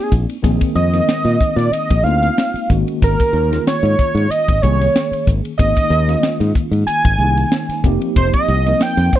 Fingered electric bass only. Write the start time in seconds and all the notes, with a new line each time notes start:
0.12 A#1
0.44 A#1
0.75 F2
1.25 A#2
1.56 A#2
1.71 muted fingered electric bass stroke
1.91 A#1
2.03 D2
2.54 muted fingered electric bass stroke
2.70 G#1
3.02 G#1
3.33 D#2
3.83 G#2
4.15 G#2
4.29 muted fingered electric bass stroke
4.49 G#1
4.63 C2
5.11 muted fingered electric bass stroke
5.27 G#1
5.59 G#1
5.90 D#2
6.40 G#2
6.55 muted fingered electric bass stroke
6.71 G#2
6.86 muted fingered electric bass stroke
7.05 G#1
7.18 C2
7.69 muted fingered electric bass stroke
7.84 F1
8.16 F1
8.48 C2
8.97 F2